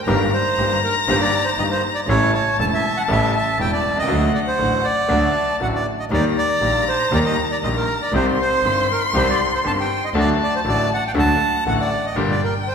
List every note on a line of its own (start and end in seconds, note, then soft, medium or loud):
0.05 0.28 G1 medium
0.05 0.29 G1 medium
0.05 0.28 G2 medium
0.05 0.29 D#3 medium
0.05 0.28 G3 medium
0.05 0.29 A#3 medium
0.05 0.29 D#4 medium
0.05 0.29 G4 medium
0.05 0.19 A#4 medium
0.05 2.10 A#5 loud
0.33 0.80 C5 medium
0.57 0.78 G1 medium
0.57 0.79 G1 soft
0.57 0.79 G2 medium
0.57 0.79 D#3 soft
0.57 0.79 G3 soft
0.57 0.79 A#3 soft
0.57 0.79 D#4 soft
0.57 0.79 G4 medium
0.57 0.79 G4 soft
0.84 0.95 A#4 medium
1.08 1.29 G1 medium
1.08 1.29 G2 medium
1.08 1.29 D#3 medium
1.08 1.29 G3 medium
1.08 1.29 A#3 medium
1.08 1.29 D#4 medium
1.08 1.29 G4 medium
1.08 1.14 C5 medium
1.21 1.44 D5 medium
1.44 1.50 C5 medium
1.57 1.79 G1 medium
1.57 1.80 G1 medium
1.57 1.79 G2 medium
1.57 1.79 D#3 soft
1.57 1.79 G3 soft
1.57 1.79 A#3 soft
1.57 1.79 D#4 soft
1.57 1.79 G4 medium
1.57 1.80 G4 soft
1.57 1.64 D#5 medium
1.71 1.82 C5 medium
1.95 2.01 D5 medium
2.07 2.28 A1 medium
2.07 2.30 A1 medium
2.07 2.30 A2 medium
2.07 2.30 C#3 medium
2.07 2.30 G3 medium
2.07 2.29 A3 medium
2.07 2.30 A3 medium
2.07 2.29 C#4 medium
2.07 2.30 E4 medium
2.07 2.29 G4 medium
2.07 2.32 C#5 medium
2.07 4.04 A5 loud
2.34 2.57 C#5 medium
2.58 2.79 E1 medium
2.58 2.80 E1 medium
2.58 2.80 E2 soft
2.58 2.80 C#3 soft
2.58 2.80 G3 soft
2.58 2.79 A3 soft
2.58 2.80 A3 soft
2.58 2.79 C#4 soft
2.58 2.80 E4 soft
2.58 2.79 G4 soft
2.58 2.65 A5 loud
2.74 2.98 E5 medium
2.97 3.02 F#5 medium
3.08 3.29 A1 medium
3.08 3.30 A2 medium
3.08 3.30 C#3 medium
3.08 3.30 G3 medium
3.08 3.29 A3 medium
3.08 3.30 A3 medium
3.08 3.30 C#4 medium
3.08 3.30 E4 medium
3.08 3.30 G4 medium
3.08 3.35 E5 medium
3.36 3.58 E5 medium
3.58 3.80 E1 medium
3.58 3.80 E2 medium
3.58 3.80 C#3 soft
3.58 3.80 G3 soft
3.58 3.80 A3 soft
3.58 3.80 C#4 soft
3.58 3.80 E4 soft
3.58 3.80 G4 medium
3.58 3.71 G5 medium
3.73 3.98 D5 medium
3.84 4.08 C2 soft
3.90 3.96 B1 soft
3.96 4.02 C2 medium
3.96 4.33 D#5 medium
4.02 4.09 C#2 medium
4.02 4.10 G5 medium
4.07 4.29 D2 medium
4.07 4.30 D2 medium
4.07 4.29 D3 medium
4.07 4.29 F#3 medium
4.07 4.30 A3 medium
4.07 4.30 D4 medium
4.07 4.30 F#4 medium
4.07 5.11 F#5 medium
4.34 4.40 D5 medium
4.47 4.86 C5 medium
4.58 4.80 A1 soft
4.58 4.81 A1 medium
4.58 4.80 A2 soft
4.58 4.80 D3 soft
4.58 4.80 F#3 soft
4.58 4.80 A3 soft
4.58 4.81 A3 soft
4.58 4.81 D4 soft
4.58 4.80 F#4 soft
4.58 4.81 F#4 soft
4.84 5.57 D5 medium
5.08 5.31 D2 medium
5.08 5.31 D3 medium
5.08 5.31 F#3 medium
5.08 5.30 A3 medium
5.08 5.31 A3 medium
5.08 5.31 D4 medium
5.08 5.31 F#4 medium
5.08 5.86 A5 medium
5.59 5.81 A1 medium
5.59 5.82 A1 soft
5.59 5.82 A2 medium
5.59 5.82 D3 soft
5.59 5.82 F#3 soft
5.59 5.82 A3 soft
5.59 5.82 D4 soft
5.59 5.82 F#4 soft
5.59 5.68 F#5 medium
5.75 5.86 D5 medium
5.99 6.05 D#5 medium
6.10 6.32 D#2 medium
6.10 6.33 D#2 medium
6.10 6.33 D#3 medium
6.10 6.33 G3 medium
6.10 6.32 A#3 medium
6.10 6.33 A#3 medium
6.10 6.33 D#4 medium
6.10 6.33 G4 medium
6.10 6.25 D5 medium
6.10 8.14 A#5 medium
6.38 6.85 D5 medium
6.61 6.83 A#1 medium
6.61 6.83 A#1 soft
6.61 6.83 A#2 soft
6.61 6.83 D#3 soft
6.61 6.83 G3 soft
6.61 6.83 A#3 soft
6.61 6.83 D#4 soft
6.61 6.83 G4 soft
6.61 6.83 G4 medium
6.88 7.11 C5 medium
7.11 7.33 D#2 medium
7.11 7.34 D#3 medium
7.11 7.34 G3 medium
7.11 7.34 A#3 medium
7.11 7.34 D#4 medium
7.11 7.34 G4 medium
7.11 7.19 D5 medium
7.25 7.36 D#5 medium
7.52 7.57 D5 medium
7.61 7.83 A#1 medium
7.61 7.85 A#1 medium
7.61 7.85 A#2 medium
7.61 7.85 D#3 soft
7.61 7.85 G3 soft
7.61 7.85 A#3 soft
7.61 7.85 D#4 soft
7.61 7.85 G4 medium
7.61 7.69 D#5 medium
7.76 7.99 A#4 medium
8.02 8.13 D5 medium
8.12 8.34 C2 medium
8.12 8.35 C2 medium
8.12 8.35 C3 medium
8.12 8.35 D#3 medium
8.12 8.35 G3 medium
8.12 8.35 C4 medium
8.12 8.35 D#4 medium
8.12 8.35 G4 medium
8.12 8.26 C5 medium
8.12 10.15 C6 loud
8.41 8.87 C5 medium
8.63 8.85 G1 medium
8.63 8.86 G1 medium
8.63 8.86 G2 medium
8.63 8.86 D#3 soft
8.63 8.86 G3 soft
8.63 8.85 C4 soft
8.63 8.86 C4 soft
8.63 8.85 D#4 soft
8.63 8.85 G4 medium
8.63 8.86 G4 soft
8.91 9.02 A#4 medium
9.14 9.35 C2 medium
9.14 9.36 C2 medium
9.14 9.36 C3 medium
9.14 9.35 D#3 medium
9.14 9.36 G3 medium
9.14 9.36 C4 medium
9.14 9.36 D#4 medium
9.14 9.36 G4 medium
9.14 9.28 C5 medium
9.30 9.40 D5 medium
9.55 9.60 C5 medium
9.64 9.85 G1 medium
9.64 9.86 G2 medium
9.64 9.85 D#3 soft
9.64 9.86 G3 soft
9.64 9.86 C4 soft
9.64 9.86 D#4 soft
9.64 9.86 G4 medium
9.64 9.72 A5 medium
9.80 10.05 G5 medium
10.05 10.10 D#5 medium
10.13 10.35 D2 medium
10.13 10.36 D2 medium
10.13 10.36 D3 medium
10.13 10.36 F#3 medium
10.13 10.36 A3 medium
10.13 10.36 D4 medium
10.13 10.36 F#4 medium
10.13 11.10 A5 medium
10.20 10.30 D5 medium
10.43 10.55 D5 medium
10.55 10.60 C5 medium
10.64 10.86 A1 medium
10.64 10.86 A2 medium
10.64 10.86 D3 soft
10.64 10.86 F#3 soft
10.64 10.86 A3 soft
10.64 10.87 A3 soft
10.64 10.87 D4 soft
10.64 10.86 F#4 soft
10.64 10.87 F#4 medium
10.68 10.90 D5 medium
10.94 11.04 F#5 medium
11.07 11.16 F5 medium
11.07 11.12 G5 medium
11.14 11.36 D2 medium
11.14 11.36 D3 medium
11.14 11.36 F#3 medium
11.14 11.36 A3 medium
11.14 11.37 A3 medium
11.14 11.37 D4 medium
11.14 11.36 F#4 medium
11.14 11.37 F#4 medium
11.14 12.14 F#5 medium
11.19 11.64 A5 medium
11.65 11.86 A1 medium
11.65 11.87 A1 medium
11.65 11.87 A2 medium
11.65 11.87 D3 soft
11.65 11.87 F#3 soft
11.65 11.87 A3 soft
11.65 11.87 D4 soft
11.65 11.87 F#4 medium
11.65 11.73 F#5 medium
11.81 12.06 D5 medium
12.06 12.17 D#5 medium
12.14 12.34 G1 medium
12.14 12.32 A#2 medium
12.14 12.32 D3 medium
12.14 12.32 G3 medium
12.14 12.33 A#3 medium
12.14 12.33 D4 medium
12.14 12.33 G4 medium
12.14 12.75 G5 medium
12.31 12.41 D5 medium
12.43 12.54 A#4 medium
12.68 12.75 C5 medium